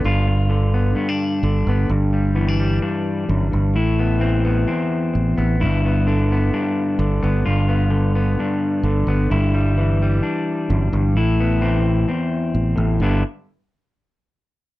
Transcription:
<<
  \new Staff \with { instrumentName = "Clean electric guitar" } { \clef bass \time 4/4 \key g \major \tempo 4 = 130 << { f'4. b8 b16 d'4~ d'16 b8 | r8 g8 b16 d'16 g8 d'2 | e'8 b8 c'8 b8 c'4. b8 | e'8 b8 d'8 b8 d'4. b8 |
f'8 b4 b8 d'4. b8 | e'8 g4 g8 d'2 | e'8 b8 c'4 c'2 | <d b d' e'>8 r2. r8 | } \\ { <g, d>4 d4 g,4 d4 | g,4 e4 g,4 fis,8 g,8 | a,4 e4 e,2 | g,4 d4 g,4 d4 |
g,4 d4 g,4 d4 | g,4 e2 fis,8 g,8 | a,4 e4 e,4. a,8 | g,8 r2. r8 | } >> }
  \new Staff \with { instrumentName = "Fingered electric bass" } { \clef bass \time 4/4 \key g \major g,,2 r4 g,,8 g,,8 | g,,2 r4 g,,8 g,,8 | a,,2 r4 a,,8 a,,8 | g,,2 r4 g,,8 g,,8 |
g,,2 r4 g,,8 g,,8 | g,,2 r4 g,,8 g,,8 | a,,2 r4 a,,8 a,,8 | g,,8 r2. r8 | }
>>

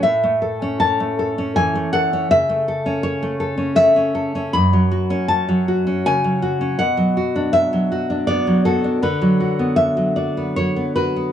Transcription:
\new Staff \with { instrumentName = "Nylon-string guitar" } { \time 3/4 \key a \major \tempo 4 = 80 << { e''4 a''4 gis''8 fis''8 | e''4 cis''4 e''4 | \key b \dorian b''4 a''4 gis''4 | fis''4 e''4 d''8 a'8 |
b'4 e''8 d''8 cis''8 b'8 | } \\ { a,16 a16 a'16 cis'8 a16 a'16 cis'16 e16 a16 a'16 cis'16 | cis16 a16 a'16 cis'8 a16 a'16 cis'16 a16 cis'16 a'16 cis'16 | fis,16 fis16 fis'16 cis'8 fis16 fis'16 cis'16 cis16 fis16 fis'16 cis'16 | b,16 fis16 fis'16 d'8 fis16 fis'16 d'16 b16 fis16 fis'16 d'16 |
d16 fis16 fis'16 b8 fis16 fis'16 b16 fis16 b16 fis'16 b16 | } >> }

